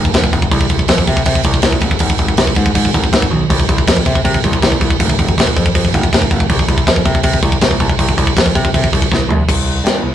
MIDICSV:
0, 0, Header, 1, 3, 480
1, 0, Start_track
1, 0, Tempo, 373367
1, 665, Time_signature, 4, 2, 24, 8
1, 13042, End_track
2, 0, Start_track
2, 0, Title_t, "Picked electric bass"
2, 0, Program_c, 0, 34
2, 175, Note_on_c, 0, 29, 100
2, 349, Note_off_c, 0, 29, 0
2, 416, Note_on_c, 0, 29, 101
2, 590, Note_off_c, 0, 29, 0
2, 658, Note_on_c, 0, 36, 105
2, 831, Note_off_c, 0, 36, 0
2, 899, Note_on_c, 0, 36, 88
2, 1071, Note_off_c, 0, 36, 0
2, 1139, Note_on_c, 0, 41, 91
2, 1311, Note_off_c, 0, 41, 0
2, 1379, Note_on_c, 0, 48, 89
2, 1551, Note_off_c, 0, 48, 0
2, 1620, Note_on_c, 0, 48, 95
2, 1791, Note_off_c, 0, 48, 0
2, 1857, Note_on_c, 0, 36, 96
2, 2029, Note_off_c, 0, 36, 0
2, 2091, Note_on_c, 0, 36, 98
2, 2265, Note_off_c, 0, 36, 0
2, 2330, Note_on_c, 0, 32, 95
2, 2505, Note_off_c, 0, 32, 0
2, 2574, Note_on_c, 0, 32, 102
2, 2747, Note_off_c, 0, 32, 0
2, 2815, Note_on_c, 0, 32, 97
2, 2988, Note_off_c, 0, 32, 0
2, 3056, Note_on_c, 0, 36, 94
2, 3229, Note_off_c, 0, 36, 0
2, 3296, Note_on_c, 0, 44, 82
2, 3468, Note_off_c, 0, 44, 0
2, 3533, Note_on_c, 0, 44, 93
2, 3706, Note_off_c, 0, 44, 0
2, 3782, Note_on_c, 0, 32, 101
2, 3952, Note_off_c, 0, 32, 0
2, 4012, Note_on_c, 0, 32, 85
2, 4186, Note_off_c, 0, 32, 0
2, 4247, Note_on_c, 0, 35, 86
2, 4423, Note_off_c, 0, 35, 0
2, 4494, Note_on_c, 0, 36, 96
2, 4667, Note_off_c, 0, 36, 0
2, 4737, Note_on_c, 0, 36, 101
2, 4909, Note_off_c, 0, 36, 0
2, 4980, Note_on_c, 0, 41, 93
2, 5152, Note_off_c, 0, 41, 0
2, 5219, Note_on_c, 0, 48, 85
2, 5391, Note_off_c, 0, 48, 0
2, 5458, Note_on_c, 0, 48, 101
2, 5630, Note_off_c, 0, 48, 0
2, 5709, Note_on_c, 0, 36, 103
2, 5878, Note_off_c, 0, 36, 0
2, 5940, Note_on_c, 0, 36, 102
2, 6111, Note_off_c, 0, 36, 0
2, 6180, Note_on_c, 0, 36, 101
2, 6352, Note_off_c, 0, 36, 0
2, 6420, Note_on_c, 0, 29, 103
2, 6592, Note_off_c, 0, 29, 0
2, 6669, Note_on_c, 0, 29, 99
2, 6838, Note_off_c, 0, 29, 0
2, 6912, Note_on_c, 0, 35, 91
2, 7080, Note_off_c, 0, 35, 0
2, 7149, Note_on_c, 0, 41, 88
2, 7318, Note_off_c, 0, 41, 0
2, 7390, Note_on_c, 0, 41, 90
2, 7559, Note_off_c, 0, 41, 0
2, 7635, Note_on_c, 0, 29, 109
2, 7802, Note_off_c, 0, 29, 0
2, 7872, Note_on_c, 0, 29, 98
2, 8041, Note_off_c, 0, 29, 0
2, 8109, Note_on_c, 0, 29, 101
2, 8279, Note_off_c, 0, 29, 0
2, 8352, Note_on_c, 0, 36, 95
2, 8520, Note_off_c, 0, 36, 0
2, 8590, Note_on_c, 0, 36, 98
2, 8759, Note_off_c, 0, 36, 0
2, 8829, Note_on_c, 0, 41, 95
2, 8998, Note_off_c, 0, 41, 0
2, 9066, Note_on_c, 0, 48, 90
2, 9236, Note_off_c, 0, 48, 0
2, 9303, Note_on_c, 0, 48, 98
2, 9474, Note_off_c, 0, 48, 0
2, 9546, Note_on_c, 0, 36, 103
2, 9716, Note_off_c, 0, 36, 0
2, 9791, Note_on_c, 0, 36, 95
2, 9960, Note_off_c, 0, 36, 0
2, 10029, Note_on_c, 0, 36, 96
2, 10199, Note_off_c, 0, 36, 0
2, 10268, Note_on_c, 0, 36, 107
2, 10438, Note_off_c, 0, 36, 0
2, 10509, Note_on_c, 0, 36, 103
2, 10679, Note_off_c, 0, 36, 0
2, 10754, Note_on_c, 0, 41, 96
2, 10922, Note_off_c, 0, 41, 0
2, 10993, Note_on_c, 0, 48, 99
2, 11161, Note_off_c, 0, 48, 0
2, 11238, Note_on_c, 0, 48, 100
2, 11404, Note_off_c, 0, 48, 0
2, 11476, Note_on_c, 0, 36, 93
2, 11644, Note_off_c, 0, 36, 0
2, 11718, Note_on_c, 0, 36, 88
2, 11885, Note_off_c, 0, 36, 0
2, 11936, Note_on_c, 0, 36, 97
2, 12111, Note_off_c, 0, 36, 0
2, 12193, Note_on_c, 0, 36, 93
2, 12602, Note_off_c, 0, 36, 0
2, 12650, Note_on_c, 0, 43, 87
2, 12864, Note_off_c, 0, 43, 0
2, 12888, Note_on_c, 0, 36, 90
2, 13042, Note_off_c, 0, 36, 0
2, 13042, End_track
3, 0, Start_track
3, 0, Title_t, "Drums"
3, 64, Note_on_c, 9, 36, 93
3, 176, Note_on_c, 9, 49, 82
3, 183, Note_off_c, 9, 36, 0
3, 183, Note_on_c, 9, 36, 76
3, 190, Note_on_c, 9, 38, 101
3, 305, Note_off_c, 9, 36, 0
3, 305, Note_off_c, 9, 49, 0
3, 305, Note_on_c, 9, 36, 86
3, 319, Note_off_c, 9, 38, 0
3, 424, Note_off_c, 9, 36, 0
3, 424, Note_on_c, 9, 36, 79
3, 425, Note_on_c, 9, 49, 60
3, 544, Note_off_c, 9, 36, 0
3, 544, Note_on_c, 9, 36, 81
3, 554, Note_off_c, 9, 49, 0
3, 661, Note_on_c, 9, 49, 86
3, 662, Note_off_c, 9, 36, 0
3, 662, Note_on_c, 9, 36, 93
3, 780, Note_off_c, 9, 36, 0
3, 780, Note_on_c, 9, 36, 89
3, 789, Note_off_c, 9, 49, 0
3, 893, Note_on_c, 9, 49, 66
3, 900, Note_off_c, 9, 36, 0
3, 900, Note_on_c, 9, 36, 87
3, 1018, Note_off_c, 9, 36, 0
3, 1018, Note_on_c, 9, 36, 92
3, 1022, Note_off_c, 9, 49, 0
3, 1131, Note_on_c, 9, 49, 92
3, 1141, Note_off_c, 9, 36, 0
3, 1141, Note_on_c, 9, 36, 84
3, 1145, Note_on_c, 9, 38, 109
3, 1259, Note_off_c, 9, 49, 0
3, 1262, Note_off_c, 9, 36, 0
3, 1262, Note_on_c, 9, 36, 91
3, 1274, Note_off_c, 9, 38, 0
3, 1376, Note_on_c, 9, 49, 74
3, 1383, Note_off_c, 9, 36, 0
3, 1383, Note_on_c, 9, 36, 87
3, 1502, Note_off_c, 9, 36, 0
3, 1502, Note_on_c, 9, 36, 95
3, 1505, Note_off_c, 9, 49, 0
3, 1613, Note_on_c, 9, 49, 92
3, 1622, Note_off_c, 9, 36, 0
3, 1622, Note_on_c, 9, 36, 96
3, 1741, Note_off_c, 9, 36, 0
3, 1741, Note_on_c, 9, 36, 90
3, 1742, Note_off_c, 9, 49, 0
3, 1845, Note_on_c, 9, 49, 76
3, 1860, Note_off_c, 9, 36, 0
3, 1860, Note_on_c, 9, 36, 98
3, 1973, Note_off_c, 9, 49, 0
3, 1977, Note_off_c, 9, 36, 0
3, 1977, Note_on_c, 9, 36, 90
3, 2081, Note_on_c, 9, 49, 92
3, 2096, Note_on_c, 9, 38, 110
3, 2097, Note_off_c, 9, 36, 0
3, 2097, Note_on_c, 9, 36, 83
3, 2210, Note_off_c, 9, 49, 0
3, 2218, Note_off_c, 9, 36, 0
3, 2218, Note_on_c, 9, 36, 85
3, 2224, Note_off_c, 9, 38, 0
3, 2319, Note_on_c, 9, 49, 65
3, 2336, Note_off_c, 9, 36, 0
3, 2336, Note_on_c, 9, 36, 78
3, 2447, Note_off_c, 9, 49, 0
3, 2457, Note_off_c, 9, 36, 0
3, 2457, Note_on_c, 9, 36, 87
3, 2557, Note_on_c, 9, 49, 100
3, 2575, Note_off_c, 9, 36, 0
3, 2575, Note_on_c, 9, 36, 85
3, 2686, Note_off_c, 9, 49, 0
3, 2698, Note_off_c, 9, 36, 0
3, 2698, Note_on_c, 9, 36, 96
3, 2802, Note_on_c, 9, 49, 62
3, 2816, Note_off_c, 9, 36, 0
3, 2816, Note_on_c, 9, 36, 82
3, 2931, Note_off_c, 9, 49, 0
3, 2937, Note_off_c, 9, 36, 0
3, 2937, Note_on_c, 9, 36, 85
3, 3047, Note_on_c, 9, 49, 83
3, 3060, Note_off_c, 9, 36, 0
3, 3060, Note_on_c, 9, 36, 85
3, 3061, Note_on_c, 9, 38, 119
3, 3176, Note_off_c, 9, 49, 0
3, 3179, Note_off_c, 9, 36, 0
3, 3179, Note_on_c, 9, 36, 89
3, 3190, Note_off_c, 9, 38, 0
3, 3277, Note_on_c, 9, 49, 67
3, 3296, Note_off_c, 9, 36, 0
3, 3296, Note_on_c, 9, 36, 84
3, 3406, Note_off_c, 9, 49, 0
3, 3418, Note_off_c, 9, 36, 0
3, 3418, Note_on_c, 9, 36, 97
3, 3535, Note_on_c, 9, 49, 101
3, 3539, Note_off_c, 9, 36, 0
3, 3539, Note_on_c, 9, 36, 90
3, 3664, Note_off_c, 9, 36, 0
3, 3664, Note_off_c, 9, 49, 0
3, 3664, Note_on_c, 9, 36, 84
3, 3784, Note_off_c, 9, 36, 0
3, 3784, Note_on_c, 9, 36, 90
3, 3784, Note_on_c, 9, 49, 67
3, 3903, Note_off_c, 9, 36, 0
3, 3903, Note_on_c, 9, 36, 78
3, 3913, Note_off_c, 9, 49, 0
3, 4017, Note_on_c, 9, 49, 78
3, 4022, Note_off_c, 9, 36, 0
3, 4022, Note_on_c, 9, 36, 78
3, 4031, Note_on_c, 9, 38, 111
3, 4144, Note_off_c, 9, 36, 0
3, 4144, Note_on_c, 9, 36, 89
3, 4146, Note_off_c, 9, 49, 0
3, 4160, Note_off_c, 9, 38, 0
3, 4261, Note_on_c, 9, 48, 69
3, 4273, Note_off_c, 9, 36, 0
3, 4389, Note_off_c, 9, 48, 0
3, 4503, Note_on_c, 9, 36, 88
3, 4505, Note_on_c, 9, 49, 86
3, 4623, Note_off_c, 9, 36, 0
3, 4623, Note_on_c, 9, 36, 87
3, 4634, Note_off_c, 9, 49, 0
3, 4743, Note_off_c, 9, 36, 0
3, 4743, Note_on_c, 9, 36, 97
3, 4748, Note_on_c, 9, 49, 64
3, 4864, Note_off_c, 9, 36, 0
3, 4864, Note_on_c, 9, 36, 88
3, 4877, Note_off_c, 9, 49, 0
3, 4978, Note_on_c, 9, 49, 95
3, 4984, Note_off_c, 9, 36, 0
3, 4984, Note_on_c, 9, 36, 94
3, 4992, Note_on_c, 9, 38, 127
3, 5100, Note_off_c, 9, 36, 0
3, 5100, Note_on_c, 9, 36, 92
3, 5107, Note_off_c, 9, 49, 0
3, 5121, Note_off_c, 9, 38, 0
3, 5206, Note_on_c, 9, 49, 72
3, 5221, Note_off_c, 9, 36, 0
3, 5221, Note_on_c, 9, 36, 82
3, 5335, Note_off_c, 9, 49, 0
3, 5341, Note_off_c, 9, 36, 0
3, 5341, Note_on_c, 9, 36, 93
3, 5463, Note_off_c, 9, 36, 0
3, 5463, Note_on_c, 9, 36, 95
3, 5465, Note_on_c, 9, 49, 93
3, 5585, Note_off_c, 9, 36, 0
3, 5585, Note_on_c, 9, 36, 77
3, 5594, Note_off_c, 9, 49, 0
3, 5708, Note_off_c, 9, 36, 0
3, 5708, Note_on_c, 9, 36, 93
3, 5709, Note_on_c, 9, 49, 75
3, 5826, Note_off_c, 9, 36, 0
3, 5826, Note_on_c, 9, 36, 89
3, 5837, Note_off_c, 9, 49, 0
3, 5942, Note_on_c, 9, 49, 87
3, 5946, Note_off_c, 9, 36, 0
3, 5946, Note_on_c, 9, 36, 76
3, 5956, Note_on_c, 9, 38, 101
3, 6066, Note_off_c, 9, 36, 0
3, 6066, Note_on_c, 9, 36, 85
3, 6070, Note_off_c, 9, 49, 0
3, 6084, Note_off_c, 9, 38, 0
3, 6181, Note_on_c, 9, 49, 68
3, 6186, Note_off_c, 9, 36, 0
3, 6186, Note_on_c, 9, 36, 86
3, 6305, Note_off_c, 9, 36, 0
3, 6305, Note_on_c, 9, 36, 90
3, 6309, Note_off_c, 9, 49, 0
3, 6427, Note_on_c, 9, 49, 96
3, 6428, Note_off_c, 9, 36, 0
3, 6428, Note_on_c, 9, 36, 92
3, 6551, Note_off_c, 9, 36, 0
3, 6551, Note_on_c, 9, 36, 93
3, 6555, Note_off_c, 9, 49, 0
3, 6672, Note_off_c, 9, 36, 0
3, 6672, Note_on_c, 9, 36, 90
3, 6676, Note_on_c, 9, 49, 70
3, 6794, Note_off_c, 9, 36, 0
3, 6794, Note_on_c, 9, 36, 93
3, 6804, Note_off_c, 9, 49, 0
3, 6916, Note_off_c, 9, 36, 0
3, 6916, Note_on_c, 9, 36, 85
3, 6928, Note_on_c, 9, 49, 97
3, 6942, Note_on_c, 9, 38, 112
3, 7035, Note_off_c, 9, 36, 0
3, 7035, Note_on_c, 9, 36, 80
3, 7056, Note_off_c, 9, 49, 0
3, 7070, Note_off_c, 9, 38, 0
3, 7155, Note_off_c, 9, 36, 0
3, 7155, Note_on_c, 9, 36, 90
3, 7159, Note_on_c, 9, 49, 71
3, 7273, Note_off_c, 9, 36, 0
3, 7273, Note_on_c, 9, 36, 98
3, 7288, Note_off_c, 9, 49, 0
3, 7392, Note_on_c, 9, 49, 98
3, 7394, Note_off_c, 9, 36, 0
3, 7394, Note_on_c, 9, 36, 102
3, 7517, Note_off_c, 9, 36, 0
3, 7517, Note_on_c, 9, 36, 81
3, 7521, Note_off_c, 9, 49, 0
3, 7640, Note_off_c, 9, 36, 0
3, 7640, Note_on_c, 9, 36, 92
3, 7646, Note_on_c, 9, 49, 70
3, 7758, Note_off_c, 9, 36, 0
3, 7758, Note_on_c, 9, 36, 80
3, 7775, Note_off_c, 9, 49, 0
3, 7878, Note_off_c, 9, 36, 0
3, 7878, Note_on_c, 9, 36, 79
3, 7884, Note_on_c, 9, 49, 83
3, 7898, Note_on_c, 9, 38, 104
3, 7994, Note_off_c, 9, 36, 0
3, 7994, Note_on_c, 9, 36, 80
3, 8013, Note_off_c, 9, 49, 0
3, 8027, Note_off_c, 9, 38, 0
3, 8111, Note_on_c, 9, 49, 54
3, 8112, Note_off_c, 9, 36, 0
3, 8112, Note_on_c, 9, 36, 79
3, 8231, Note_off_c, 9, 36, 0
3, 8231, Note_on_c, 9, 36, 77
3, 8239, Note_off_c, 9, 49, 0
3, 8351, Note_on_c, 9, 49, 88
3, 8352, Note_off_c, 9, 36, 0
3, 8352, Note_on_c, 9, 36, 99
3, 8475, Note_off_c, 9, 36, 0
3, 8475, Note_on_c, 9, 36, 85
3, 8479, Note_off_c, 9, 49, 0
3, 8595, Note_off_c, 9, 36, 0
3, 8595, Note_on_c, 9, 36, 95
3, 8606, Note_on_c, 9, 49, 66
3, 8713, Note_off_c, 9, 36, 0
3, 8713, Note_on_c, 9, 36, 87
3, 8734, Note_off_c, 9, 49, 0
3, 8830, Note_on_c, 9, 49, 87
3, 8832, Note_off_c, 9, 36, 0
3, 8832, Note_on_c, 9, 36, 87
3, 8844, Note_on_c, 9, 38, 123
3, 8951, Note_off_c, 9, 36, 0
3, 8951, Note_on_c, 9, 36, 92
3, 8958, Note_off_c, 9, 49, 0
3, 8972, Note_off_c, 9, 38, 0
3, 9066, Note_on_c, 9, 49, 69
3, 9071, Note_off_c, 9, 36, 0
3, 9071, Note_on_c, 9, 36, 94
3, 9190, Note_off_c, 9, 36, 0
3, 9190, Note_on_c, 9, 36, 99
3, 9194, Note_off_c, 9, 49, 0
3, 9298, Note_on_c, 9, 49, 94
3, 9307, Note_off_c, 9, 36, 0
3, 9307, Note_on_c, 9, 36, 100
3, 9426, Note_off_c, 9, 49, 0
3, 9430, Note_off_c, 9, 36, 0
3, 9430, Note_on_c, 9, 36, 91
3, 9543, Note_on_c, 9, 49, 73
3, 9548, Note_off_c, 9, 36, 0
3, 9548, Note_on_c, 9, 36, 100
3, 9669, Note_off_c, 9, 36, 0
3, 9669, Note_on_c, 9, 36, 91
3, 9672, Note_off_c, 9, 49, 0
3, 9786, Note_on_c, 9, 49, 91
3, 9792, Note_off_c, 9, 36, 0
3, 9792, Note_on_c, 9, 36, 89
3, 9801, Note_on_c, 9, 38, 117
3, 9911, Note_off_c, 9, 36, 0
3, 9911, Note_on_c, 9, 36, 84
3, 9915, Note_off_c, 9, 49, 0
3, 9929, Note_off_c, 9, 38, 0
3, 10025, Note_on_c, 9, 49, 63
3, 10030, Note_off_c, 9, 36, 0
3, 10030, Note_on_c, 9, 36, 79
3, 10150, Note_off_c, 9, 36, 0
3, 10150, Note_on_c, 9, 36, 83
3, 10153, Note_off_c, 9, 49, 0
3, 10270, Note_on_c, 9, 49, 92
3, 10272, Note_off_c, 9, 36, 0
3, 10272, Note_on_c, 9, 36, 89
3, 10395, Note_off_c, 9, 36, 0
3, 10395, Note_on_c, 9, 36, 97
3, 10399, Note_off_c, 9, 49, 0
3, 10515, Note_off_c, 9, 36, 0
3, 10515, Note_on_c, 9, 36, 86
3, 10522, Note_on_c, 9, 49, 74
3, 10634, Note_off_c, 9, 36, 0
3, 10634, Note_on_c, 9, 36, 88
3, 10651, Note_off_c, 9, 49, 0
3, 10756, Note_off_c, 9, 36, 0
3, 10756, Note_on_c, 9, 36, 84
3, 10763, Note_on_c, 9, 49, 96
3, 10777, Note_on_c, 9, 38, 106
3, 10874, Note_off_c, 9, 36, 0
3, 10874, Note_on_c, 9, 36, 93
3, 10891, Note_off_c, 9, 49, 0
3, 10906, Note_off_c, 9, 38, 0
3, 10997, Note_off_c, 9, 36, 0
3, 10997, Note_on_c, 9, 36, 95
3, 11003, Note_on_c, 9, 49, 73
3, 11117, Note_off_c, 9, 36, 0
3, 11117, Note_on_c, 9, 36, 91
3, 11131, Note_off_c, 9, 49, 0
3, 11240, Note_off_c, 9, 36, 0
3, 11240, Note_on_c, 9, 36, 100
3, 11251, Note_on_c, 9, 49, 88
3, 11362, Note_off_c, 9, 36, 0
3, 11362, Note_on_c, 9, 36, 96
3, 11380, Note_off_c, 9, 49, 0
3, 11482, Note_off_c, 9, 36, 0
3, 11482, Note_on_c, 9, 36, 96
3, 11502, Note_on_c, 9, 49, 78
3, 11599, Note_off_c, 9, 36, 0
3, 11599, Note_on_c, 9, 36, 85
3, 11631, Note_off_c, 9, 49, 0
3, 11719, Note_off_c, 9, 36, 0
3, 11719, Note_on_c, 9, 36, 85
3, 11744, Note_on_c, 9, 38, 63
3, 11848, Note_off_c, 9, 36, 0
3, 11873, Note_off_c, 9, 38, 0
3, 11963, Note_on_c, 9, 43, 96
3, 12092, Note_off_c, 9, 43, 0
3, 12195, Note_on_c, 9, 36, 102
3, 12202, Note_on_c, 9, 49, 58
3, 12202, Note_on_c, 9, 57, 115
3, 12323, Note_off_c, 9, 36, 0
3, 12331, Note_off_c, 9, 49, 0
3, 12331, Note_off_c, 9, 57, 0
3, 12671, Note_on_c, 9, 49, 57
3, 12686, Note_on_c, 9, 38, 108
3, 12800, Note_off_c, 9, 49, 0
3, 12814, Note_off_c, 9, 38, 0
3, 13042, End_track
0, 0, End_of_file